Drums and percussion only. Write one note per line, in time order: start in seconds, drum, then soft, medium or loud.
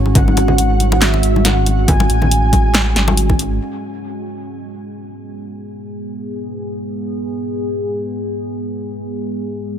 0.06 muted conga medium
0.15 kick loud
0.15 closed hi-hat medium
0.15 low conga medium
0.28 high conga medium
0.37 closed hi-hat medium
0.37 muted conga medium
0.48 low conga medium
0.58 closed hi-hat medium
0.58 muted conga medium
0.80 closed hi-hat medium
0.80 high conga medium
0.92 muted conga medium
1.02 snare loud
1.02 clap medium
1.02 closed hi-hat medium
1.14 muted conga medium
1.23 closed hi-hat medium
1.36 high conga medium
1.45 snare medium
1.45 closed hi-hat medium
1.45 muted conga medium
1.66 closed hi-hat medium
1.66 muted conga medium
1.88 kick loud
1.88 closed hi-hat medium
1.88 low conga loud
2.00 muted conga medium
2.00 high conga medium
2.10 closed hi-hat medium
2.22 muted conga medium
2.22 low conga medium
2.31 closed hi-hat medium
2.53 kick medium
2.53 closed hi-hat medium
2.53 muted conga medium
2.53 high conga medium
2.74 snare loud
2.74 clap medium
2.74 closed hi-hat medium
2.74 muted conga medium
2.96 snare medium
2.96 closed hi-hat medium
3.08 muted conga medium
3.08 high conga medium
3.17 closed hi-hat medium
3.30 kick medium
3.30 muted conga medium
3.39 closed hi-hat medium